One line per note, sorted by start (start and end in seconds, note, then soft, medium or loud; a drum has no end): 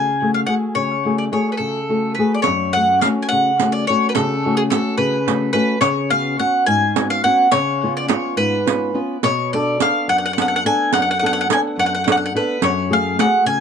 0.00 0.45 C#3 medium
0.00 0.30 G#5 medium
0.22 0.47 A3 soft
0.22 0.47 F#4 soft
0.22 0.47 G#4 soft
0.34 0.39 F5 medium
0.47 0.93 A3 soft
0.47 0.93 F#4 soft
0.47 0.93 G#4 soft
0.47 0.54 F#5 medium
0.75 1.30 C#3 medium
0.75 1.15 C#5 medium
1.05 1.31 A3 soft
1.05 1.31 F#4 soft
1.05 1.32 G#4 soft
1.18 1.23 D5 medium
1.32 1.78 A3 soft
1.32 1.78 F#4 soft
1.32 1.79 G#4 soft
1.32 1.51 C#5 medium
1.52 1.57 B4 soft
1.57 2.16 C#3 soft
1.57 2.14 A4 medium
1.89 2.17 A3 soft
1.89 2.18 F#4 soft
1.89 2.19 A4 soft
2.15 2.40 A3 soft
2.15 2.34 B4 medium
2.19 2.41 F#4 soft
2.19 2.40 G#4 soft
2.34 2.42 D5 medium
2.42 2.72 C#5 medium
2.42 riq medium
2.47 3.02 F#2 medium
2.73 3.04 A3 soft
2.73 3.04 C#4 soft
2.73 3.00 F#5 medium
2.77 3.04 F#4 medium
3.01 3.50 A3 soft
3.01 3.50 C#4 soft
3.01 3.07 F5 medium
3.01 riq medium
3.06 3.50 F#4 soft
3.22 3.28 G#5 medium
3.29 3.87 C#3 medium
3.29 3.70 F#5 loud
3.60 3.88 A3 soft
3.60 3.88 C#4 soft
3.60 3.89 F#4 medium
3.60 riq medium
3.72 3.85 D5 medium
3.87 4.34 A3 soft
3.87 4.34 C#4 soft
3.87 4.34 F#4 medium
3.87 4.06 C#5 medium
4.09 4.14 B4 medium
4.15 4.70 C#3 medium
4.15 4.55 A4 medium
4.15 riq medium
4.46 4.71 A3 soft
4.46 4.72 C#4 soft
4.46 4.71 F#4 medium
4.57 4.62 G#4 medium
4.70 5.16 A3 soft
4.70 5.17 C#4 soft
4.70 5.17 F#4 soft
4.70 4.95 A4 medium
4.70 riq medium
4.97 5.52 C#3 medium
4.97 5.50 B4 medium
5.27 5.53 A3 soft
5.27 5.53 C#4 soft
5.27 5.54 F#4 soft
5.27 riq medium
5.53 5.76 A3 soft
5.53 5.76 C#4 soft
5.53 5.76 F#4 medium
5.53 5.78 B4 medium
5.81 6.36 C#3 medium
5.81 6.09 C#5 medium
5.81 riq medium
6.10 6.39 B3 medium
6.10 6.38 C#4 soft
6.10 6.39 F#4 medium
6.10 6.36 F5 loud
6.39 6.85 B3 soft
6.39 6.85 C#4 soft
6.39 6.85 F#4 medium
6.39 6.64 F#5 medium
6.66 7.22 G#2 medium
6.66 7.07 G#5 loud
6.96 7.24 B3 soft
6.96 7.25 C#4 soft
6.96 7.25 F#4 soft
6.96 riq medium
7.10 7.23 F5 medium
7.24 7.46 B3 medium
7.24 7.47 C#4 soft
7.24 7.47 F#4 medium
7.24 7.49 F#5 medium
7.51 8.08 C#3 medium
7.51 7.92 C#5 loud
7.51 riq medium
7.83 8.09 B3 soft
7.83 8.09 C#4 soft
7.83 8.09 F4 medium
7.97 8.08 D5 medium
8.08 8.56 B3 soft
8.08 8.56 C#4 soft
8.08 8.56 F4 medium
8.08 8.37 C#5 medium
8.08 riq medium
8.36 8.93 G#2 medium
8.36 8.98 B4 medium
8.66 8.94 B3 soft
8.66 8.93 C#4 soft
8.66 8.94 F4 soft
8.66 riq medium
8.94 9.17 B3 medium
8.94 9.16 C#4 soft
8.94 9.17 F4 medium
9.23 9.79 B2 medium
9.23 9.53 C#5 medium
9.23 riq medium
9.53 9.79 B3 soft
9.53 9.79 D4 soft
9.53 9.80 A4 medium
9.53 9.79 D5 medium
9.80 10.26 B3 soft
9.80 10.27 D4 soft
9.80 10.27 A4 soft
9.80 10.09 F5 medium
9.80 riq medium
10.08 10.64 F#2 medium
10.08 10.17 F#5 loud
10.18 10.24 F#5 medium
10.26 10.32 F#5 medium
10.33 10.64 B3 soft
10.33 10.41 F#5 medium
10.38 10.65 D4 soft
10.38 10.65 A4 medium
10.38 10.47 F#5 medium
10.38 riq medium
10.48 10.55 F#5 medium
10.56 10.63 F#5 medium
10.65 11.11 B3 soft
10.65 11.12 D4 soft
10.65 11.12 A4 medium
10.65 10.92 G#5 medium
10.93 11.49 F#2 medium
10.93 11.01 F#5 medium
10.93 riq medium
11.02 11.09 F#5 medium
11.11 11.18 F#5 medium
11.19 11.48 B3 medium
11.19 11.49 D4 soft
11.19 11.49 A4 medium
11.19 11.25 F#5 medium
11.26 11.32 F#5 medium
11.33 11.39 F#5 medium
11.41 11.47 F#5 medium
11.49 11.95 B3 soft
11.49 11.96 D4 soft
11.49 11.96 A4 medium
11.49 11.60 G#5 medium
11.49 riq medium
11.77 12.33 F#2 medium
11.77 11.85 F#5 medium
11.86 11.93 F#5 medium
11.95 12.02 F#5 medium
12.04 12.33 B3 soft
12.04 12.34 D4 soft
12.04 12.35 A4 soft
12.04 12.11 F#5 medium
12.04 riq medium
12.12 12.16 F#5 medium
12.17 12.24 F#5 medium
12.26 12.32 F#5 medium
12.35 12.56 B3 medium
12.35 12.57 D4 soft
12.35 12.57 A4 medium
12.35 12.63 B4 medium
12.62 13.17 F#2 medium
12.62 12.93 C#5 medium
12.62 riq medium
12.90 13.18 A3 medium
12.90 13.18 F#4 soft
12.90 13.19 G#4 medium
12.90 13.18 F5 medium
13.19 13.60 A3 soft
13.19 13.60 F#4 soft
13.19 13.60 G#4 medium
13.19 13.45 F#5 medium
13.19 riq medium
13.46 13.60 C#3 medium
13.46 13.60 G#5 medium